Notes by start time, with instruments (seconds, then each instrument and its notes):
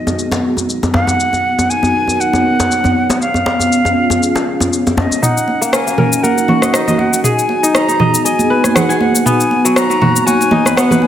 Already playing: analog synth pad B3 D#4 F#4 G#4 D#5, flute D#5
0.07 djembe tone, shaker
0.19 shaker
0.31 djembe slap, djembe tone, shaker
0.57 djembe tone, shaker
0.69 shaker
0.83 djembe tone, shaker
0.94 flute F#5, djembe slap, djembe bass
1.07 djembe tone, shaker
1.19 analog synth pad B3 D#4 F#4 A#4 C#5, shaker
1.33 djembe tone, shaker
1.59 djembe tone, shaker
1.70 flute G#5, shaker
1.83 djembe tone, shaker
2.08 djembe tone, shaker
2.20 flute F#5, shaker
2.33 djembe tone, shaker
2.60 djembe slap, djembe tone, shaker
2.71 shaker
2.84 djembe tone, djembe bass, shaker
3.10 djembe slap, djembe tone, shaker
3.21 analog synth pad C#4 F4 G#4, flute F5, shaker
3.34 djembe tone, shaker
3.46 djembe slap
3.60 djembe tone, shaker
3.72 shaker
3.85 djembe tone, shaker
4.10 djembe tone, shaker
4.23 shaker
4.35 djembe slap, djembe tone, shaker
4.60 djembe tone, shaker
4.73 shaker
4.87 djembe tone, shaker
4.97 flute D#5, djembe slap, djembe bass
5.11 djembe tone, shaker
5.22 analog synth pad C#4 D#4 F#4 A#4 D#5, kora D#4, flute F#5, mid tom, shaker
5.37 shaker
5.48 muted conga
5.61 kora A#3, shaker
5.73 kora A#4, flute G#5, cross-stick, shaker
5.87 kora A#3, muted conga, shaker
5.98 kora A#4, mid tom, high conga, low conga
6.13 shaker
6.23 kora A#4, flute F#5, high conga, shaker
6.38 muted conga, shaker
6.48 kora F#4, high conga, low conga
6.62 kora D#5, cross-stick, high conga, shaker
6.73 kora D#4, flute D#5, cross-stick, muted conga, shaker
6.88 kora D#5, high conga, low conga, shaker
6.99 flute F#5, high conga
7.13 muted conga, shaker
7.24 analog synth pad B3 G#4, kora G#4, flute G#5, mid tom, shaker
7.39 shaker
7.49 muted conga
7.63 kora D#4, shaker
7.74 kora D#5, flute A#5, cross-stick, shaker
7.88 kora D#4, muted conga, shaker
8.00 kora D#5, mid tom, low conga
8.14 shaker
8.25 kora D#5, flute G#5, shaker
8.39 muted conga, high conga, shaker
8.50 kora B4
8.64 kora G#5, cross-stick, high conga, shaker
8.75 kora G#4, flute F#5, cross-stick, muted conga, high conga, low conga, shaker
8.89 kora G#5, shaker
9.00 flute F#5, high conga
9.15 muted conga, high conga, shaker
9.25 kora B3, analog synth pad C#5 A#5, flute G#5, mid tom, shaker
9.40 shaker
9.51 muted conga
9.65 kora F#3, shaker
9.76 kora F#4, flute A#5, cross-stick, shaker
9.90 kora F#3, muted conga, shaker
10.01 kora F#4, mid tom, high conga, low conga
10.16 shaker
10.26 kora F#4, flute G#5, high conga, shaker
10.41 muted conga, shaker
10.51 kora D#4, high conga, low conga
10.65 kora B4, cross-stick, high conga, shaker
10.76 kora B3, flute F#5, cross-stick, muted conga, shaker
10.90 kora B4, high conga, low conga, shaker
11.02 flute G#5, high conga